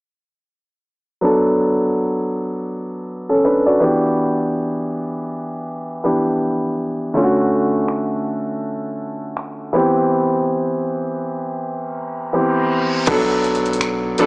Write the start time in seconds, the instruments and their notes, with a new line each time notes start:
1.21 grand piano F#3 B3 D4 A4
3.29 grand piano C#4 A4
3.45 grand piano D4 B4
3.66 grand piano F#4 D5
3.80 grand piano E3 B3 D4 G4
6.04 grand piano E3 B3 D4 G4
7.14 grand piano D3 A3 C#4 F4
7.24 grand piano F#4
7.88 finger snap
9.37 finger snap
9.73 grand piano E3 B3 C4 G4
11.59 reverse cymbal
12.33 grand piano E3 B3 C4 G4
13.07 sub bass B1, grand piano F#3 B3 D4 A4, kick, closed hi-hat, crash
13.44 closed hi-hat
13.55 closed hi-hat
13.66 closed hi-hat
13.73 closed hi-hat
13.81 finger snap, closed hi-hat
14.18 sub bass A1, grand piano F#3 B3 D4 A4, closed hi-hat